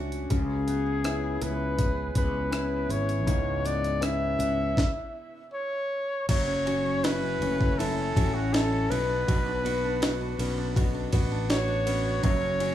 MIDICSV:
0, 0, Header, 1, 6, 480
1, 0, Start_track
1, 0, Key_signature, 3, "minor"
1, 0, Tempo, 741656
1, 196, Time_signature, 4, 2, 24, 8
1, 2116, Tempo, 751880
1, 5956, Tempo, 738916
1, 8205, End_track
2, 0, Start_track
2, 0, Title_t, "Flugelhorn"
2, 0, Program_c, 0, 56
2, 204, Note_on_c, 0, 68, 92
2, 924, Note_on_c, 0, 71, 81
2, 934, Note_off_c, 0, 68, 0
2, 1398, Note_off_c, 0, 71, 0
2, 1407, Note_on_c, 0, 71, 79
2, 1885, Note_on_c, 0, 73, 90
2, 1895, Note_off_c, 0, 71, 0
2, 2367, Note_on_c, 0, 74, 94
2, 2377, Note_off_c, 0, 73, 0
2, 2607, Note_on_c, 0, 76, 105
2, 2616, Note_off_c, 0, 74, 0
2, 3321, Note_off_c, 0, 76, 0
2, 3563, Note_on_c, 0, 73, 99
2, 4019, Note_off_c, 0, 73, 0
2, 4045, Note_on_c, 0, 73, 108
2, 4524, Note_on_c, 0, 71, 105
2, 4533, Note_off_c, 0, 73, 0
2, 4997, Note_on_c, 0, 69, 93
2, 5007, Note_off_c, 0, 71, 0
2, 5355, Note_on_c, 0, 66, 79
2, 5365, Note_off_c, 0, 69, 0
2, 5475, Note_on_c, 0, 69, 85
2, 5485, Note_off_c, 0, 66, 0
2, 5713, Note_on_c, 0, 71, 95
2, 5722, Note_off_c, 0, 69, 0
2, 6675, Note_off_c, 0, 71, 0
2, 7401, Note_on_c, 0, 73, 111
2, 7851, Note_off_c, 0, 73, 0
2, 7881, Note_on_c, 0, 73, 120
2, 8205, Note_off_c, 0, 73, 0
2, 8205, End_track
3, 0, Start_track
3, 0, Title_t, "Grand piano"
3, 0, Program_c, 1, 0
3, 0, Control_c, 1, 64, 127
3, 0, Note_on_c, 1, 54, 59
3, 0, Note_on_c, 1, 61, 43
3, 0, Note_on_c, 1, 62, 42
3, 0, Note_on_c, 1, 66, 50
3, 168, Note_off_c, 1, 54, 0
3, 183, Note_off_c, 1, 61, 0
3, 183, Note_off_c, 1, 62, 0
3, 185, Note_off_c, 1, 66, 0
3, 195, Note_on_c, 1, 49, 64
3, 204, Control_c, 1, 64, 0
3, 304, Control_c, 1, 64, 127
3, 676, Note_on_c, 1, 59, 48
3, 677, Note_on_c, 1, 61, 43
3, 680, Note_on_c, 1, 64, 57
3, 1139, Note_off_c, 1, 59, 0
3, 1140, Note_off_c, 1, 61, 0
3, 1141, Note_off_c, 1, 64, 0
3, 1628, Note_on_c, 1, 59, 45
3, 1630, Note_on_c, 1, 61, 47
3, 1635, Note_on_c, 1, 64, 52
3, 2089, Note_off_c, 1, 49, 0
3, 2098, Note_off_c, 1, 59, 0
3, 2099, Note_off_c, 1, 61, 0
3, 2102, Note_off_c, 1, 64, 0
3, 2115, Note_on_c, 1, 44, 65
3, 2588, Note_on_c, 1, 59, 50
3, 2588, Note_on_c, 1, 61, 48
3, 2592, Note_on_c, 1, 64, 54
3, 3047, Note_off_c, 1, 44, 0
3, 3055, Note_off_c, 1, 59, 0
3, 3055, Note_off_c, 1, 61, 0
3, 3057, Note_off_c, 1, 64, 0
3, 3081, Control_c, 1, 64, 0
3, 4041, Note_on_c, 1, 54, 65
3, 4148, Control_c, 1, 64, 127
3, 4283, Note_on_c, 1, 61, 52
3, 4523, Note_on_c, 1, 64, 57
3, 4757, Note_off_c, 1, 61, 0
3, 4767, Note_on_c, 1, 61, 54
3, 4995, Note_off_c, 1, 64, 0
3, 5005, Note_on_c, 1, 64, 59
3, 5230, Note_off_c, 1, 61, 0
3, 5240, Note_on_c, 1, 61, 51
3, 5466, Note_off_c, 1, 64, 0
3, 5475, Note_on_c, 1, 64, 54
3, 5691, Note_off_c, 1, 54, 0
3, 5702, Note_off_c, 1, 61, 0
3, 5708, Note_off_c, 1, 64, 0
3, 5712, Note_on_c, 1, 59, 64
3, 5724, Control_c, 1, 64, 0
3, 5843, Control_c, 1, 64, 127
3, 5952, Note_on_c, 1, 66, 57
3, 6182, Note_off_c, 1, 59, 0
3, 6192, Note_on_c, 1, 59, 55
3, 6427, Note_off_c, 1, 66, 0
3, 6436, Note_on_c, 1, 66, 60
3, 6669, Note_off_c, 1, 59, 0
3, 6679, Note_on_c, 1, 59, 54
3, 6904, Note_off_c, 1, 66, 0
3, 6914, Note_on_c, 1, 66, 56
3, 7148, Note_off_c, 1, 59, 0
3, 7158, Note_on_c, 1, 59, 54
3, 7381, Note_off_c, 1, 66, 0
3, 7391, Note_on_c, 1, 66, 55
3, 7621, Note_off_c, 1, 59, 0
3, 7630, Note_on_c, 1, 59, 70
3, 7857, Note_off_c, 1, 66, 0
3, 7865, Note_off_c, 1, 59, 0
3, 7867, Note_on_c, 1, 54, 72
3, 7882, Control_c, 1, 64, 0
3, 8004, Control_c, 1, 64, 127
3, 8113, Note_on_c, 1, 61, 57
3, 8205, Note_off_c, 1, 54, 0
3, 8205, Note_off_c, 1, 61, 0
3, 8205, End_track
4, 0, Start_track
4, 0, Title_t, "Steel-string acoustic guitar"
4, 0, Program_c, 2, 25
4, 0, Note_on_c, 2, 57, 53
4, 0, Note_on_c, 2, 61, 55
4, 0, Note_on_c, 2, 66, 59
4, 195, Note_on_c, 2, 49, 69
4, 244, Note_off_c, 2, 66, 0
4, 245, Note_off_c, 2, 57, 0
4, 436, Note_on_c, 2, 59, 57
4, 455, Note_off_c, 2, 61, 0
4, 675, Note_on_c, 2, 64, 53
4, 906, Note_off_c, 2, 59, 0
4, 914, Note_on_c, 2, 59, 53
4, 1154, Note_on_c, 2, 68, 59
4, 1386, Note_off_c, 2, 59, 0
4, 1394, Note_on_c, 2, 59, 53
4, 1632, Note_off_c, 2, 64, 0
4, 1634, Note_on_c, 2, 64, 58
4, 1866, Note_off_c, 2, 68, 0
4, 1874, Note_on_c, 2, 68, 63
4, 2109, Note_off_c, 2, 49, 0
4, 2117, Note_on_c, 2, 49, 77
4, 2348, Note_off_c, 2, 59, 0
4, 2356, Note_on_c, 2, 59, 55
4, 2589, Note_off_c, 2, 64, 0
4, 2592, Note_on_c, 2, 64, 60
4, 2824, Note_off_c, 2, 59, 0
4, 2831, Note_on_c, 2, 59, 53
4, 3120, Note_off_c, 2, 59, 0
4, 3121, Note_off_c, 2, 68, 0
4, 3122, Note_off_c, 2, 49, 0
4, 3440, Note_off_c, 2, 64, 0
4, 4042, Note_on_c, 2, 42, 73
4, 4164, Note_on_c, 2, 61, 54
4, 4288, Note_on_c, 2, 66, 60
4, 4406, Note_off_c, 2, 61, 0
4, 4408, Note_on_c, 2, 61, 54
4, 4528, Note_off_c, 2, 66, 0
4, 4530, Note_on_c, 2, 66, 66
4, 4644, Note_off_c, 2, 61, 0
4, 4647, Note_on_c, 2, 61, 55
4, 4767, Note_on_c, 2, 57, 55
4, 4884, Note_off_c, 2, 61, 0
4, 4887, Note_on_c, 2, 61, 54
4, 4995, Note_off_c, 2, 42, 0
4, 5003, Note_on_c, 2, 42, 79
4, 5121, Note_off_c, 2, 61, 0
4, 5123, Note_on_c, 2, 61, 57
4, 5237, Note_off_c, 2, 66, 0
4, 5239, Note_on_c, 2, 66, 62
4, 5358, Note_off_c, 2, 61, 0
4, 5361, Note_on_c, 2, 61, 56
4, 5478, Note_off_c, 2, 66, 0
4, 5480, Note_on_c, 2, 66, 67
4, 5595, Note_off_c, 2, 61, 0
4, 5598, Note_on_c, 2, 61, 63
4, 5717, Note_off_c, 2, 42, 0
4, 5718, Note_on_c, 2, 47, 78
4, 5766, Note_off_c, 2, 57, 0
4, 5831, Note_off_c, 2, 61, 0
4, 5834, Note_on_c, 2, 62, 61
4, 5946, Note_off_c, 2, 47, 0
4, 5954, Note_on_c, 2, 47, 81
4, 6064, Note_off_c, 2, 62, 0
4, 6072, Note_on_c, 2, 62, 61
4, 6190, Note_off_c, 2, 66, 0
4, 6192, Note_on_c, 2, 66, 64
4, 6309, Note_off_c, 2, 62, 0
4, 6317, Note_on_c, 2, 62, 62
4, 6432, Note_off_c, 2, 66, 0
4, 6435, Note_on_c, 2, 66, 69
4, 6549, Note_off_c, 2, 62, 0
4, 6557, Note_on_c, 2, 62, 62
4, 6679, Note_on_c, 2, 61, 55
4, 6787, Note_off_c, 2, 62, 0
4, 6794, Note_on_c, 2, 62, 61
4, 6906, Note_off_c, 2, 47, 0
4, 6914, Note_on_c, 2, 47, 77
4, 7027, Note_off_c, 2, 62, 0
4, 7034, Note_on_c, 2, 62, 56
4, 7150, Note_off_c, 2, 66, 0
4, 7153, Note_on_c, 2, 66, 66
4, 7267, Note_off_c, 2, 62, 0
4, 7275, Note_on_c, 2, 62, 66
4, 7388, Note_off_c, 2, 66, 0
4, 7391, Note_on_c, 2, 66, 71
4, 7504, Note_off_c, 2, 62, 0
4, 7512, Note_on_c, 2, 62, 66
4, 7630, Note_off_c, 2, 61, 0
4, 7633, Note_on_c, 2, 61, 61
4, 7746, Note_off_c, 2, 62, 0
4, 7754, Note_on_c, 2, 62, 59
4, 7869, Note_on_c, 2, 42, 80
4, 7872, Note_off_c, 2, 47, 0
4, 7922, Note_off_c, 2, 62, 0
4, 7990, Note_off_c, 2, 61, 0
4, 7990, Note_on_c, 2, 61, 62
4, 8108, Note_off_c, 2, 66, 0
4, 8111, Note_on_c, 2, 66, 69
4, 8205, Note_off_c, 2, 42, 0
4, 8205, Note_off_c, 2, 61, 0
4, 8205, Note_off_c, 2, 66, 0
4, 8205, End_track
5, 0, Start_track
5, 0, Title_t, "Fretless electric bass"
5, 0, Program_c, 3, 35
5, 0, Note_on_c, 3, 37, 77
5, 170, Note_off_c, 3, 37, 0
5, 198, Note_on_c, 3, 37, 102
5, 889, Note_off_c, 3, 37, 0
5, 918, Note_on_c, 3, 37, 85
5, 1369, Note_off_c, 3, 37, 0
5, 1394, Note_on_c, 3, 37, 91
5, 1848, Note_off_c, 3, 37, 0
5, 1871, Note_on_c, 3, 32, 87
5, 2119, Note_off_c, 3, 32, 0
5, 2119, Note_on_c, 3, 37, 98
5, 2808, Note_off_c, 3, 37, 0
5, 2830, Note_on_c, 3, 37, 80
5, 3055, Note_off_c, 3, 37, 0
5, 4043, Note_on_c, 3, 30, 93
5, 4738, Note_off_c, 3, 30, 0
5, 4759, Note_on_c, 3, 30, 88
5, 5212, Note_off_c, 3, 30, 0
5, 5239, Note_on_c, 3, 33, 80
5, 5691, Note_off_c, 3, 33, 0
5, 5712, Note_on_c, 3, 35, 102
5, 5936, Note_off_c, 3, 35, 0
5, 5956, Note_on_c, 3, 35, 105
5, 6651, Note_off_c, 3, 35, 0
5, 6672, Note_on_c, 3, 35, 90
5, 7126, Note_off_c, 3, 35, 0
5, 7153, Note_on_c, 3, 33, 86
5, 7847, Note_off_c, 3, 33, 0
5, 7873, Note_on_c, 3, 30, 112
5, 8205, Note_off_c, 3, 30, 0
5, 8205, End_track
6, 0, Start_track
6, 0, Title_t, "Drums"
6, 78, Note_on_c, 9, 42, 43
6, 143, Note_off_c, 9, 42, 0
6, 196, Note_on_c, 9, 42, 76
6, 198, Note_on_c, 9, 36, 81
6, 260, Note_off_c, 9, 42, 0
6, 263, Note_off_c, 9, 36, 0
6, 438, Note_on_c, 9, 42, 58
6, 503, Note_off_c, 9, 42, 0
6, 676, Note_on_c, 9, 42, 75
6, 679, Note_on_c, 9, 37, 98
6, 740, Note_off_c, 9, 42, 0
6, 744, Note_off_c, 9, 37, 0
6, 916, Note_on_c, 9, 42, 75
6, 981, Note_off_c, 9, 42, 0
6, 1155, Note_on_c, 9, 42, 76
6, 1156, Note_on_c, 9, 36, 89
6, 1220, Note_off_c, 9, 42, 0
6, 1221, Note_off_c, 9, 36, 0
6, 1394, Note_on_c, 9, 42, 70
6, 1395, Note_on_c, 9, 36, 75
6, 1458, Note_off_c, 9, 42, 0
6, 1460, Note_off_c, 9, 36, 0
6, 1634, Note_on_c, 9, 42, 73
6, 1637, Note_on_c, 9, 37, 96
6, 1699, Note_off_c, 9, 42, 0
6, 1702, Note_off_c, 9, 37, 0
6, 1880, Note_on_c, 9, 42, 71
6, 1944, Note_off_c, 9, 42, 0
6, 1999, Note_on_c, 9, 42, 44
6, 2064, Note_off_c, 9, 42, 0
6, 2119, Note_on_c, 9, 36, 94
6, 2120, Note_on_c, 9, 42, 88
6, 2183, Note_off_c, 9, 36, 0
6, 2184, Note_off_c, 9, 42, 0
6, 2362, Note_on_c, 9, 42, 65
6, 2426, Note_off_c, 9, 42, 0
6, 2483, Note_on_c, 9, 42, 47
6, 2547, Note_off_c, 9, 42, 0
6, 2596, Note_on_c, 9, 42, 77
6, 2600, Note_on_c, 9, 37, 98
6, 2660, Note_off_c, 9, 42, 0
6, 2664, Note_off_c, 9, 37, 0
6, 2837, Note_on_c, 9, 42, 77
6, 2900, Note_off_c, 9, 42, 0
6, 3075, Note_on_c, 9, 36, 94
6, 3080, Note_on_c, 9, 38, 83
6, 3139, Note_off_c, 9, 36, 0
6, 3144, Note_off_c, 9, 38, 0
6, 4043, Note_on_c, 9, 51, 76
6, 4044, Note_on_c, 9, 36, 90
6, 4044, Note_on_c, 9, 49, 90
6, 4107, Note_off_c, 9, 51, 0
6, 4108, Note_off_c, 9, 36, 0
6, 4108, Note_off_c, 9, 49, 0
6, 4287, Note_on_c, 9, 51, 52
6, 4351, Note_off_c, 9, 51, 0
6, 4523, Note_on_c, 9, 51, 66
6, 4527, Note_on_c, 9, 38, 106
6, 4587, Note_off_c, 9, 51, 0
6, 4591, Note_off_c, 9, 38, 0
6, 4765, Note_on_c, 9, 51, 65
6, 4829, Note_off_c, 9, 51, 0
6, 4885, Note_on_c, 9, 36, 90
6, 4949, Note_off_c, 9, 36, 0
6, 5010, Note_on_c, 9, 51, 70
6, 5073, Note_off_c, 9, 51, 0
6, 5242, Note_on_c, 9, 36, 81
6, 5245, Note_on_c, 9, 51, 61
6, 5306, Note_off_c, 9, 36, 0
6, 5309, Note_off_c, 9, 51, 0
6, 5481, Note_on_c, 9, 51, 62
6, 5484, Note_on_c, 9, 38, 98
6, 5545, Note_off_c, 9, 51, 0
6, 5548, Note_off_c, 9, 38, 0
6, 5721, Note_on_c, 9, 51, 60
6, 5785, Note_off_c, 9, 51, 0
6, 5956, Note_on_c, 9, 36, 103
6, 5957, Note_on_c, 9, 51, 72
6, 6021, Note_off_c, 9, 36, 0
6, 6022, Note_off_c, 9, 51, 0
6, 6199, Note_on_c, 9, 51, 54
6, 6264, Note_off_c, 9, 51, 0
6, 6434, Note_on_c, 9, 51, 66
6, 6438, Note_on_c, 9, 38, 112
6, 6499, Note_off_c, 9, 51, 0
6, 6503, Note_off_c, 9, 38, 0
6, 6677, Note_on_c, 9, 51, 69
6, 6742, Note_off_c, 9, 51, 0
6, 6917, Note_on_c, 9, 36, 97
6, 6922, Note_on_c, 9, 51, 74
6, 6982, Note_off_c, 9, 36, 0
6, 6987, Note_off_c, 9, 51, 0
6, 7152, Note_on_c, 9, 51, 64
6, 7155, Note_on_c, 9, 36, 84
6, 7217, Note_off_c, 9, 51, 0
6, 7219, Note_off_c, 9, 36, 0
6, 7394, Note_on_c, 9, 51, 66
6, 7397, Note_on_c, 9, 38, 105
6, 7459, Note_off_c, 9, 51, 0
6, 7462, Note_off_c, 9, 38, 0
6, 7635, Note_on_c, 9, 51, 68
6, 7700, Note_off_c, 9, 51, 0
6, 7873, Note_on_c, 9, 36, 95
6, 7873, Note_on_c, 9, 51, 73
6, 7938, Note_off_c, 9, 36, 0
6, 7938, Note_off_c, 9, 51, 0
6, 8112, Note_on_c, 9, 51, 54
6, 8177, Note_off_c, 9, 51, 0
6, 8205, End_track
0, 0, End_of_file